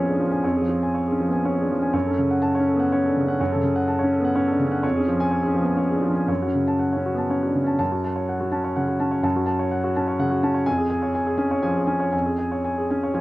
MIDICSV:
0, 0, Header, 1, 2, 480
1, 0, Start_track
1, 0, Key_signature, 3, "minor"
1, 0, Tempo, 498339
1, 420, Time_signature, 3, 2, 24, 8
1, 1865, Tempo, 481155
1, 5705, Tempo, 500417
1, 8105, Tempo, 476948
1, 11465, Tempo, 503778
1, 12972, End_track
2, 0, Start_track
2, 0, Title_t, "Grand piano"
2, 0, Program_c, 0, 0
2, 0, Control_c, 0, 64, 127
2, 0, Note_on_c, 0, 41, 67
2, 0, Note_on_c, 0, 53, 52
2, 0, Note_on_c, 0, 59, 39
2, 0, Note_on_c, 0, 61, 47
2, 0, Note_on_c, 0, 68, 51
2, 0, Note_on_c, 0, 73, 50
2, 0, Note_on_c, 0, 80, 49
2, 56, Note_off_c, 0, 68, 0
2, 56, Note_on_c, 0, 68, 42
2, 95, Note_on_c, 0, 62, 40
2, 130, Note_off_c, 0, 73, 0
2, 186, Note_off_c, 0, 53, 0
2, 186, Note_on_c, 0, 53, 45
2, 193, Note_off_c, 0, 61, 0
2, 249, Note_off_c, 0, 68, 0
2, 257, Note_off_c, 0, 62, 0
2, 266, Note_on_c, 0, 61, 42
2, 305, Note_off_c, 0, 80, 0
2, 305, Note_on_c, 0, 80, 43
2, 374, Note_off_c, 0, 53, 0
2, 378, Note_off_c, 0, 41, 0
2, 424, Note_on_c, 0, 41, 59
2, 425, Note_on_c, 0, 73, 46
2, 436, Control_c, 0, 64, 0
2, 442, Note_off_c, 0, 59, 0
2, 495, Note_off_c, 0, 80, 0
2, 519, Note_off_c, 0, 61, 0
2, 542, Note_on_c, 0, 68, 42
2, 588, Note_on_c, 0, 53, 39
2, 598, Control_c, 0, 64, 127
2, 615, Note_off_c, 0, 73, 0
2, 647, Note_off_c, 0, 53, 0
2, 662, Note_on_c, 0, 53, 43
2, 734, Note_off_c, 0, 68, 0
2, 798, Note_on_c, 0, 80, 42
2, 854, Note_off_c, 0, 53, 0
2, 909, Note_on_c, 0, 73, 43
2, 983, Note_off_c, 0, 80, 0
2, 1034, Note_on_c, 0, 68, 43
2, 1077, Note_on_c, 0, 61, 41
2, 1100, Note_off_c, 0, 73, 0
2, 1159, Note_on_c, 0, 53, 44
2, 1223, Note_off_c, 0, 68, 0
2, 1236, Note_on_c, 0, 59, 36
2, 1276, Note_on_c, 0, 80, 45
2, 1329, Note_off_c, 0, 61, 0
2, 1345, Note_off_c, 0, 53, 0
2, 1392, Note_off_c, 0, 59, 0
2, 1398, Note_on_c, 0, 73, 46
2, 1399, Note_on_c, 0, 61, 42
2, 1464, Note_off_c, 0, 80, 0
2, 1525, Note_on_c, 0, 68, 41
2, 1555, Note_on_c, 0, 62, 32
2, 1585, Note_off_c, 0, 73, 0
2, 1637, Note_on_c, 0, 53, 43
2, 1650, Note_off_c, 0, 61, 0
2, 1709, Note_off_c, 0, 68, 0
2, 1711, Note_off_c, 0, 62, 0
2, 1720, Note_on_c, 0, 61, 43
2, 1754, Note_on_c, 0, 80, 44
2, 1823, Note_off_c, 0, 53, 0
2, 1829, Note_off_c, 0, 41, 0
2, 1863, Note_on_c, 0, 42, 61
2, 1863, Note_on_c, 0, 73, 54
2, 1869, Note_off_c, 0, 80, 0
2, 1872, Note_off_c, 0, 61, 0
2, 1887, Control_c, 0, 64, 0
2, 1993, Note_on_c, 0, 69, 49
2, 2034, Control_c, 0, 64, 127
2, 2034, Note_on_c, 0, 61, 44
2, 2059, Note_off_c, 0, 73, 0
2, 2112, Note_on_c, 0, 49, 47
2, 2184, Note_off_c, 0, 69, 0
2, 2235, Note_on_c, 0, 78, 43
2, 2289, Note_off_c, 0, 61, 0
2, 2304, Note_off_c, 0, 49, 0
2, 2347, Note_on_c, 0, 81, 63
2, 2425, Note_off_c, 0, 78, 0
2, 2475, Note_on_c, 0, 73, 49
2, 2521, Note_on_c, 0, 61, 47
2, 2542, Note_off_c, 0, 81, 0
2, 2603, Note_on_c, 0, 69, 47
2, 2666, Note_off_c, 0, 73, 0
2, 2683, Note_on_c, 0, 59, 44
2, 2724, Note_on_c, 0, 78, 53
2, 2774, Note_off_c, 0, 61, 0
2, 2790, Note_off_c, 0, 69, 0
2, 2839, Note_off_c, 0, 59, 0
2, 2848, Note_on_c, 0, 73, 55
2, 2850, Note_on_c, 0, 61, 51
2, 2912, Note_off_c, 0, 78, 0
2, 2971, Note_on_c, 0, 69, 43
2, 3011, Note_on_c, 0, 62, 39
2, 3035, Note_off_c, 0, 73, 0
2, 3091, Note_on_c, 0, 49, 50
2, 3101, Note_off_c, 0, 61, 0
2, 3158, Note_off_c, 0, 69, 0
2, 3166, Note_off_c, 0, 62, 0
2, 3168, Note_on_c, 0, 61, 47
2, 3208, Note_on_c, 0, 78, 51
2, 3280, Note_off_c, 0, 42, 0
2, 3280, Note_off_c, 0, 49, 0
2, 3329, Note_on_c, 0, 42, 62
2, 3332, Note_on_c, 0, 73, 55
2, 3342, Control_c, 0, 64, 0
2, 3400, Note_off_c, 0, 78, 0
2, 3425, Note_off_c, 0, 61, 0
2, 3445, Note_on_c, 0, 69, 53
2, 3475, Note_on_c, 0, 49, 49
2, 3515, Control_c, 0, 64, 127
2, 3522, Note_off_c, 0, 73, 0
2, 3543, Note_off_c, 0, 49, 0
2, 3558, Note_on_c, 0, 49, 52
2, 3639, Note_off_c, 0, 69, 0
2, 3682, Note_on_c, 0, 78, 51
2, 3755, Note_off_c, 0, 49, 0
2, 3803, Note_on_c, 0, 81, 51
2, 3877, Note_off_c, 0, 78, 0
2, 3911, Note_on_c, 0, 73, 51
2, 3960, Note_on_c, 0, 61, 50
2, 3996, Note_off_c, 0, 81, 0
2, 4047, Note_on_c, 0, 69, 51
2, 4109, Note_off_c, 0, 73, 0
2, 4126, Note_on_c, 0, 59, 47
2, 4171, Note_on_c, 0, 78, 53
2, 4216, Note_off_c, 0, 61, 0
2, 4236, Note_off_c, 0, 69, 0
2, 4278, Note_on_c, 0, 61, 53
2, 4278, Note_on_c, 0, 73, 61
2, 4283, Note_off_c, 0, 59, 0
2, 4357, Note_off_c, 0, 78, 0
2, 4394, Note_on_c, 0, 69, 52
2, 4435, Note_on_c, 0, 62, 45
2, 4470, Note_off_c, 0, 73, 0
2, 4512, Note_on_c, 0, 49, 55
2, 4533, Note_off_c, 0, 61, 0
2, 4587, Note_off_c, 0, 69, 0
2, 4592, Note_on_c, 0, 61, 51
2, 4596, Note_off_c, 0, 62, 0
2, 4636, Note_on_c, 0, 78, 50
2, 4706, Note_off_c, 0, 49, 0
2, 4721, Note_off_c, 0, 42, 0
2, 4753, Note_off_c, 0, 61, 0
2, 4753, Note_on_c, 0, 73, 62
2, 4756, Note_off_c, 0, 78, 0
2, 4757, Note_on_c, 0, 41, 67
2, 4776, Control_c, 0, 64, 0
2, 4874, Note_on_c, 0, 68, 48
2, 4920, Note_on_c, 0, 61, 49
2, 4925, Control_c, 0, 64, 127
2, 4945, Note_off_c, 0, 73, 0
2, 4999, Note_on_c, 0, 53, 53
2, 5064, Note_off_c, 0, 68, 0
2, 5123, Note_on_c, 0, 80, 67
2, 5170, Note_off_c, 0, 61, 0
2, 5186, Note_off_c, 0, 53, 0
2, 5231, Note_on_c, 0, 73, 47
2, 5307, Note_off_c, 0, 80, 0
2, 5344, Note_on_c, 0, 68, 50
2, 5385, Note_on_c, 0, 61, 50
2, 5420, Note_off_c, 0, 73, 0
2, 5463, Note_on_c, 0, 53, 54
2, 5536, Note_off_c, 0, 68, 0
2, 5540, Note_on_c, 0, 59, 42
2, 5582, Note_on_c, 0, 80, 47
2, 5641, Note_off_c, 0, 61, 0
2, 5656, Note_off_c, 0, 53, 0
2, 5687, Note_on_c, 0, 61, 45
2, 5690, Note_on_c, 0, 73, 52
2, 5703, Note_off_c, 0, 59, 0
2, 5775, Note_off_c, 0, 80, 0
2, 5813, Note_on_c, 0, 68, 44
2, 5856, Note_on_c, 0, 62, 37
2, 5887, Note_off_c, 0, 73, 0
2, 5928, Note_on_c, 0, 53, 50
2, 5950, Note_off_c, 0, 61, 0
2, 6008, Note_on_c, 0, 61, 44
2, 6010, Note_off_c, 0, 68, 0
2, 6020, Note_off_c, 0, 62, 0
2, 6060, Note_on_c, 0, 80, 41
2, 6130, Note_off_c, 0, 53, 0
2, 6149, Note_off_c, 0, 41, 0
2, 6179, Note_off_c, 0, 61, 0
2, 6180, Note_on_c, 0, 42, 53
2, 6181, Note_on_c, 0, 73, 47
2, 6185, Note_off_c, 0, 80, 0
2, 6205, Control_c, 0, 64, 0
2, 6314, Note_on_c, 0, 66, 44
2, 6357, Control_c, 0, 64, 127
2, 6361, Note_on_c, 0, 61, 39
2, 6380, Note_off_c, 0, 73, 0
2, 6434, Note_on_c, 0, 49, 46
2, 6507, Note_off_c, 0, 66, 0
2, 6559, Note_on_c, 0, 81, 49
2, 6615, Note_off_c, 0, 61, 0
2, 6627, Note_off_c, 0, 49, 0
2, 6671, Note_on_c, 0, 78, 41
2, 6750, Note_off_c, 0, 81, 0
2, 6798, Note_on_c, 0, 73, 40
2, 6840, Note_on_c, 0, 61, 41
2, 6866, Note_off_c, 0, 78, 0
2, 6926, Note_on_c, 0, 66, 43
2, 6990, Note_off_c, 0, 73, 0
2, 7007, Note_on_c, 0, 59, 36
2, 7043, Note_on_c, 0, 81, 39
2, 7095, Note_off_c, 0, 61, 0
2, 7114, Note_off_c, 0, 66, 0
2, 7158, Note_on_c, 0, 61, 43
2, 7158, Note_on_c, 0, 73, 42
2, 7163, Note_off_c, 0, 59, 0
2, 7233, Note_off_c, 0, 81, 0
2, 7278, Note_on_c, 0, 66, 36
2, 7320, Note_on_c, 0, 62, 33
2, 7352, Note_off_c, 0, 73, 0
2, 7399, Note_on_c, 0, 49, 44
2, 7417, Note_off_c, 0, 61, 0
2, 7473, Note_off_c, 0, 66, 0
2, 7481, Note_off_c, 0, 62, 0
2, 7484, Note_on_c, 0, 61, 39
2, 7507, Note_on_c, 0, 81, 43
2, 7592, Note_off_c, 0, 49, 0
2, 7597, Note_off_c, 0, 42, 0
2, 7612, Note_off_c, 0, 81, 0
2, 7626, Note_on_c, 0, 81, 60
2, 7628, Note_on_c, 0, 42, 54
2, 7641, Note_off_c, 0, 61, 0
2, 7656, Control_c, 0, 64, 0
2, 7750, Note_on_c, 0, 66, 40
2, 7820, Note_off_c, 0, 81, 0
2, 7844, Control_c, 0, 64, 127
2, 7870, Note_on_c, 0, 81, 43
2, 7940, Note_off_c, 0, 66, 0
2, 7980, Note_on_c, 0, 73, 40
2, 8058, Note_off_c, 0, 81, 0
2, 8106, Note_on_c, 0, 78, 39
2, 8173, Note_off_c, 0, 73, 0
2, 8221, Note_on_c, 0, 66, 42
2, 8299, Note_off_c, 0, 78, 0
2, 8336, Note_on_c, 0, 81, 44
2, 8337, Note_on_c, 0, 61, 42
2, 8415, Note_off_c, 0, 66, 0
2, 8461, Note_on_c, 0, 73, 43
2, 8532, Note_off_c, 0, 81, 0
2, 8583, Note_on_c, 0, 78, 47
2, 8586, Note_on_c, 0, 49, 42
2, 8655, Note_off_c, 0, 73, 0
2, 8707, Note_on_c, 0, 66, 38
2, 8724, Note_off_c, 0, 61, 0
2, 8776, Note_off_c, 0, 78, 0
2, 8821, Note_on_c, 0, 81, 52
2, 8825, Note_on_c, 0, 61, 43
2, 8898, Note_off_c, 0, 66, 0
2, 8936, Note_on_c, 0, 73, 43
2, 8969, Note_off_c, 0, 49, 0
2, 9015, Note_off_c, 0, 81, 0
2, 9019, Note_off_c, 0, 42, 0
2, 9054, Note_on_c, 0, 42, 57
2, 9058, Note_on_c, 0, 81, 56
2, 9084, Control_c, 0, 64, 0
2, 9133, Note_off_c, 0, 73, 0
2, 9185, Note_on_c, 0, 66, 45
2, 9210, Note_off_c, 0, 61, 0
2, 9255, Note_off_c, 0, 81, 0
2, 9267, Control_c, 0, 64, 127
2, 9286, Note_on_c, 0, 81, 55
2, 9378, Note_off_c, 0, 66, 0
2, 9417, Note_on_c, 0, 73, 45
2, 9488, Note_off_c, 0, 81, 0
2, 9541, Note_on_c, 0, 78, 48
2, 9613, Note_off_c, 0, 73, 0
2, 9664, Note_on_c, 0, 66, 49
2, 9735, Note_off_c, 0, 78, 0
2, 9791, Note_on_c, 0, 81, 53
2, 9793, Note_on_c, 0, 61, 48
2, 9856, Note_off_c, 0, 66, 0
2, 9904, Note_on_c, 0, 73, 46
2, 9978, Note_off_c, 0, 81, 0
2, 10022, Note_on_c, 0, 49, 50
2, 10025, Note_on_c, 0, 78, 61
2, 10094, Note_off_c, 0, 73, 0
2, 10139, Note_on_c, 0, 66, 47
2, 10169, Note_off_c, 0, 61, 0
2, 10213, Note_off_c, 0, 78, 0
2, 10260, Note_on_c, 0, 61, 55
2, 10264, Note_on_c, 0, 81, 57
2, 10330, Note_off_c, 0, 66, 0
2, 10374, Note_on_c, 0, 73, 51
2, 10402, Note_off_c, 0, 49, 0
2, 10451, Note_off_c, 0, 42, 0
2, 10452, Note_off_c, 0, 81, 0
2, 10495, Note_off_c, 0, 73, 0
2, 10495, Note_on_c, 0, 80, 76
2, 10496, Note_on_c, 0, 41, 65
2, 10498, Note_off_c, 0, 61, 0
2, 10514, Control_c, 0, 64, 0
2, 10612, Note_on_c, 0, 68, 54
2, 10657, Control_c, 0, 64, 127
2, 10688, Note_off_c, 0, 80, 0
2, 10734, Note_on_c, 0, 80, 58
2, 10807, Note_off_c, 0, 68, 0
2, 10858, Note_on_c, 0, 73, 45
2, 10928, Note_off_c, 0, 80, 0
2, 10984, Note_on_c, 0, 80, 55
2, 11051, Note_off_c, 0, 73, 0
2, 11101, Note_on_c, 0, 68, 53
2, 11175, Note_off_c, 0, 80, 0
2, 11214, Note_on_c, 0, 61, 49
2, 11214, Note_on_c, 0, 80, 53
2, 11295, Note_off_c, 0, 68, 0
2, 11348, Note_on_c, 0, 73, 52
2, 11413, Note_off_c, 0, 80, 0
2, 11465, Note_on_c, 0, 80, 58
2, 11468, Note_on_c, 0, 53, 49
2, 11539, Note_off_c, 0, 73, 0
2, 11579, Note_on_c, 0, 68, 48
2, 11604, Note_off_c, 0, 61, 0
2, 11654, Note_off_c, 0, 80, 0
2, 11695, Note_on_c, 0, 80, 53
2, 11700, Note_on_c, 0, 61, 49
2, 11771, Note_off_c, 0, 68, 0
2, 11819, Note_on_c, 0, 73, 48
2, 11846, Note_off_c, 0, 53, 0
2, 11890, Note_off_c, 0, 80, 0
2, 11903, Note_off_c, 0, 41, 0
2, 11939, Note_on_c, 0, 41, 56
2, 11939, Note_on_c, 0, 80, 49
2, 11962, Control_c, 0, 64, 0
2, 12013, Note_off_c, 0, 73, 0
2, 12068, Note_on_c, 0, 68, 42
2, 12087, Note_off_c, 0, 61, 0
2, 12135, Note_off_c, 0, 80, 0
2, 12145, Control_c, 0, 64, 127
2, 12190, Note_on_c, 0, 80, 52
2, 12259, Note_off_c, 0, 68, 0
2, 12313, Note_on_c, 0, 73, 43
2, 12381, Note_off_c, 0, 80, 0
2, 12437, Note_on_c, 0, 80, 43
2, 12502, Note_off_c, 0, 73, 0
2, 12561, Note_on_c, 0, 68, 42
2, 12625, Note_off_c, 0, 80, 0
2, 12684, Note_on_c, 0, 80, 47
2, 12687, Note_on_c, 0, 61, 43
2, 12746, Note_off_c, 0, 68, 0
2, 12806, Note_on_c, 0, 73, 46
2, 12867, Note_off_c, 0, 80, 0
2, 12906, Note_on_c, 0, 53, 43
2, 12910, Note_on_c, 0, 80, 48
2, 12972, Note_off_c, 0, 41, 0
2, 12972, Note_off_c, 0, 53, 0
2, 12972, Note_off_c, 0, 61, 0
2, 12972, Note_off_c, 0, 73, 0
2, 12972, Note_off_c, 0, 80, 0
2, 12972, End_track
0, 0, End_of_file